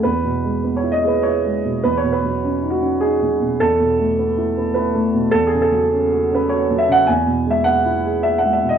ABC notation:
X:1
M:3/4
L:1/16
Q:1/4=103
K:E
V:1 name="Grand piano"
B4- B c d B c4 | B c B4 F2 G4 | A8 B4 | A G A4- A B c2 e f |
g3 e f4 e f e d |]
V:2 name="Grand piano" clef=bass
(3E,,2 B,,2 G,2 (3B,2 E2 G2 (3E2 G,2 B,,2 | (3E,,2 B,,2 F,2 (3C2 D2 C2 (3D2 F,2 B,,2 | (3E,,2 B,,2 A,2 (3B,2 E2 B,2 (3E2 A,2 B,,2 | (3E,,2 C,2 F,2 (3C2 F2 C2 (3F2 F,2 C,2 |
(3E,,2 B,,2 G,2 (3B,2 E2 G2 (3E2 G,2 B,,2 |]